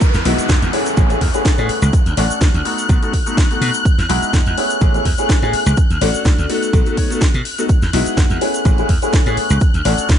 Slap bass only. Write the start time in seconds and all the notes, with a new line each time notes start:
0.01 muted slap bass stroke
0.14 E2
0.25 B1
0.49 E2
0.62 E2
0.97 A1
1.21 E2
1.58 A2
1.69 muted slap bass stroke
1.82 C#2
2.06 D2
2.17 A1
2.30 muted slap bass stroke
2.41 D2
2.54 D2
2.89 B1
3.61 B2
3.85 muted slap bass stroke
3.98 E2
4.09 B1
4.33 E2
4.46 E2
4.81 A1
5.05 E2
5.42 A2
5.53 muted slap bass stroke
5.66 C#2
5.90 D2
6.01 A1
6.25 D2
6.38 D2
6.73 B1
7.34 B2
7.69 muted slap bass stroke
7.82 E2
7.93 B1
8.17 E2
8.30 E2
8.65 A1
8.89 E2
9.26 A2
9.37 muted slap bass stroke
9.50 C#2
9.74 D2
9.85 A1
10.09 D2